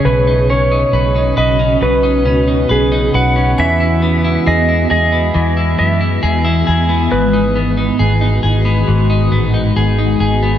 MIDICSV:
0, 0, Header, 1, 6, 480
1, 0, Start_track
1, 0, Tempo, 882353
1, 29, Time_signature, 4, 2, 24, 8
1, 5758, End_track
2, 0, Start_track
2, 0, Title_t, "Synth bell"
2, 0, Program_c, 0, 98
2, 1949, Note_on_c, 0, 80, 43
2, 3279, Note_off_c, 0, 80, 0
2, 5758, End_track
3, 0, Start_track
3, 0, Title_t, "Electric slide guitar"
3, 0, Program_c, 1, 29
3, 27, Note_on_c, 1, 71, 96
3, 272, Note_on_c, 1, 73, 80
3, 275, Note_off_c, 1, 71, 0
3, 747, Note_off_c, 1, 73, 0
3, 749, Note_on_c, 1, 75, 85
3, 993, Note_on_c, 1, 71, 82
3, 996, Note_off_c, 1, 75, 0
3, 1449, Note_off_c, 1, 71, 0
3, 1475, Note_on_c, 1, 68, 66
3, 1714, Note_on_c, 1, 78, 84
3, 1719, Note_off_c, 1, 68, 0
3, 1957, Note_on_c, 1, 76, 98
3, 1959, Note_off_c, 1, 78, 0
3, 2432, Note_off_c, 1, 76, 0
3, 2434, Note_on_c, 1, 75, 85
3, 2665, Note_off_c, 1, 75, 0
3, 2671, Note_on_c, 1, 75, 81
3, 3146, Note_off_c, 1, 75, 0
3, 3149, Note_on_c, 1, 76, 69
3, 3871, Note_on_c, 1, 71, 84
3, 3890, Note_off_c, 1, 76, 0
3, 5288, Note_off_c, 1, 71, 0
3, 5758, End_track
4, 0, Start_track
4, 0, Title_t, "Clean electric guitar"
4, 0, Program_c, 2, 27
4, 0, Note_on_c, 2, 61, 50
4, 0, Note_on_c, 2, 63, 55
4, 0, Note_on_c, 2, 68, 56
4, 30, Note_on_c, 2, 47, 70
4, 77, Note_off_c, 2, 68, 0
4, 146, Note_off_c, 2, 63, 0
4, 148, Note_on_c, 2, 63, 50
4, 165, Note_off_c, 2, 61, 0
4, 270, Note_on_c, 2, 61, 55
4, 382, Note_off_c, 2, 63, 0
4, 389, Note_on_c, 2, 63, 54
4, 507, Note_on_c, 2, 71, 54
4, 621, Note_off_c, 2, 63, 0
4, 628, Note_on_c, 2, 63, 47
4, 743, Note_off_c, 2, 71, 0
4, 745, Note_on_c, 2, 71, 58
4, 859, Note_off_c, 2, 61, 0
4, 866, Note_on_c, 2, 61, 49
4, 979, Note_off_c, 2, 47, 0
4, 985, Note_on_c, 2, 47, 63
4, 1099, Note_off_c, 2, 63, 0
4, 1105, Note_on_c, 2, 63, 49
4, 1220, Note_off_c, 2, 61, 0
4, 1226, Note_on_c, 2, 61, 53
4, 1340, Note_off_c, 2, 63, 0
4, 1346, Note_on_c, 2, 63, 46
4, 1463, Note_off_c, 2, 71, 0
4, 1465, Note_on_c, 2, 71, 55
4, 1581, Note_off_c, 2, 63, 0
4, 1587, Note_on_c, 2, 63, 60
4, 1707, Note_off_c, 2, 71, 0
4, 1710, Note_on_c, 2, 71, 52
4, 1821, Note_off_c, 2, 61, 0
4, 1827, Note_on_c, 2, 61, 54
4, 1947, Note_on_c, 2, 52, 69
4, 1995, Note_off_c, 2, 47, 0
4, 1996, Note_off_c, 2, 61, 0
4, 1996, Note_off_c, 2, 63, 0
4, 2068, Note_on_c, 2, 64, 49
4, 2188, Note_on_c, 2, 59, 52
4, 2303, Note_off_c, 2, 64, 0
4, 2309, Note_on_c, 2, 64, 62
4, 2427, Note_off_c, 2, 71, 0
4, 2429, Note_on_c, 2, 68, 58
4, 2543, Note_off_c, 2, 64, 0
4, 2549, Note_on_c, 2, 64, 46
4, 2664, Note_off_c, 2, 68, 0
4, 2666, Note_on_c, 2, 68, 60
4, 2785, Note_off_c, 2, 59, 0
4, 2787, Note_on_c, 2, 59, 54
4, 2900, Note_off_c, 2, 52, 0
4, 2907, Note_on_c, 2, 52, 69
4, 3023, Note_off_c, 2, 64, 0
4, 3029, Note_on_c, 2, 64, 49
4, 3144, Note_off_c, 2, 59, 0
4, 3146, Note_on_c, 2, 59, 51
4, 3261, Note_off_c, 2, 64, 0
4, 3267, Note_on_c, 2, 64, 51
4, 3385, Note_off_c, 2, 68, 0
4, 3387, Note_on_c, 2, 68, 60
4, 3500, Note_off_c, 2, 64, 0
4, 3506, Note_on_c, 2, 64, 60
4, 3626, Note_off_c, 2, 68, 0
4, 3628, Note_on_c, 2, 68, 60
4, 3745, Note_off_c, 2, 59, 0
4, 3748, Note_on_c, 2, 59, 50
4, 3867, Note_on_c, 2, 44, 75
4, 3916, Note_off_c, 2, 52, 0
4, 3916, Note_off_c, 2, 64, 0
4, 3989, Note_on_c, 2, 63, 51
4, 4108, Note_off_c, 2, 59, 0
4, 4110, Note_on_c, 2, 59, 57
4, 4226, Note_off_c, 2, 63, 0
4, 4229, Note_on_c, 2, 63, 52
4, 4346, Note_off_c, 2, 68, 0
4, 4348, Note_on_c, 2, 68, 53
4, 4465, Note_off_c, 2, 63, 0
4, 4467, Note_on_c, 2, 63, 57
4, 4579, Note_off_c, 2, 68, 0
4, 4586, Note_on_c, 2, 68, 62
4, 4704, Note_off_c, 2, 59, 0
4, 4706, Note_on_c, 2, 59, 54
4, 4821, Note_off_c, 2, 44, 0
4, 4828, Note_on_c, 2, 44, 71
4, 4947, Note_off_c, 2, 63, 0
4, 4949, Note_on_c, 2, 63, 53
4, 5067, Note_off_c, 2, 59, 0
4, 5069, Note_on_c, 2, 59, 52
4, 5187, Note_off_c, 2, 63, 0
4, 5189, Note_on_c, 2, 63, 42
4, 5305, Note_off_c, 2, 68, 0
4, 5312, Note_on_c, 2, 68, 60
4, 5430, Note_off_c, 2, 63, 0
4, 5432, Note_on_c, 2, 63, 55
4, 5544, Note_off_c, 2, 68, 0
4, 5550, Note_on_c, 2, 68, 57
4, 5670, Note_off_c, 2, 59, 0
4, 5672, Note_on_c, 2, 59, 50
4, 5758, Note_off_c, 2, 44, 0
4, 5758, Note_off_c, 2, 59, 0
4, 5758, Note_off_c, 2, 63, 0
4, 5758, Note_off_c, 2, 68, 0
4, 5758, End_track
5, 0, Start_track
5, 0, Title_t, "Ambient pad"
5, 0, Program_c, 3, 92
5, 0, Note_on_c, 3, 49, 84
5, 28, Note_on_c, 3, 61, 77
5, 29, Note_on_c, 3, 66, 96
5, 30, Note_on_c, 3, 59, 75
5, 1927, Note_off_c, 3, 49, 0
5, 1929, Note_off_c, 3, 61, 0
5, 1930, Note_off_c, 3, 66, 0
5, 1944, Note_on_c, 3, 52, 80
5, 1946, Note_on_c, 3, 66, 88
5, 1947, Note_on_c, 3, 56, 73
5, 2898, Note_off_c, 3, 66, 0
5, 2906, Note_on_c, 3, 64, 86
5, 3847, Note_off_c, 3, 52, 0
5, 3858, Note_off_c, 3, 64, 0
5, 3868, Note_on_c, 3, 51, 80
5, 3871, Note_on_c, 3, 66, 93
5, 5758, Note_off_c, 3, 51, 0
5, 5758, Note_off_c, 3, 56, 0
5, 5758, Note_off_c, 3, 59, 0
5, 5758, Note_off_c, 3, 66, 0
5, 5758, End_track
6, 0, Start_track
6, 0, Title_t, "Fingered electric bass"
6, 0, Program_c, 4, 33
6, 26, Note_on_c, 4, 35, 90
6, 450, Note_off_c, 4, 35, 0
6, 504, Note_on_c, 4, 35, 84
6, 717, Note_off_c, 4, 35, 0
6, 745, Note_on_c, 4, 35, 72
6, 958, Note_off_c, 4, 35, 0
6, 986, Note_on_c, 4, 35, 92
6, 1226, Note_off_c, 4, 35, 0
6, 1226, Note_on_c, 4, 37, 77
6, 1438, Note_off_c, 4, 37, 0
6, 1469, Note_on_c, 4, 35, 84
6, 1680, Note_off_c, 4, 35, 0
6, 1708, Note_on_c, 4, 35, 90
6, 1920, Note_off_c, 4, 35, 0
6, 1949, Note_on_c, 4, 40, 93
6, 2371, Note_off_c, 4, 40, 0
6, 2431, Note_on_c, 4, 40, 88
6, 2641, Note_off_c, 4, 40, 0
6, 2669, Note_on_c, 4, 40, 70
6, 2880, Note_off_c, 4, 40, 0
6, 2911, Note_on_c, 4, 40, 86
6, 3121, Note_off_c, 4, 40, 0
6, 3152, Note_on_c, 4, 42, 76
6, 3362, Note_off_c, 4, 42, 0
6, 3390, Note_on_c, 4, 40, 86
6, 3601, Note_off_c, 4, 40, 0
6, 3634, Note_on_c, 4, 40, 81
6, 3843, Note_off_c, 4, 40, 0
6, 3873, Note_on_c, 4, 32, 85
6, 4293, Note_off_c, 4, 32, 0
6, 4350, Note_on_c, 4, 32, 80
6, 4561, Note_off_c, 4, 32, 0
6, 4590, Note_on_c, 4, 32, 74
6, 4801, Note_off_c, 4, 32, 0
6, 4830, Note_on_c, 4, 32, 89
6, 5041, Note_off_c, 4, 32, 0
6, 5068, Note_on_c, 4, 33, 70
6, 5279, Note_off_c, 4, 33, 0
6, 5310, Note_on_c, 4, 32, 75
6, 5521, Note_off_c, 4, 32, 0
6, 5549, Note_on_c, 4, 32, 78
6, 5758, Note_off_c, 4, 32, 0
6, 5758, End_track
0, 0, End_of_file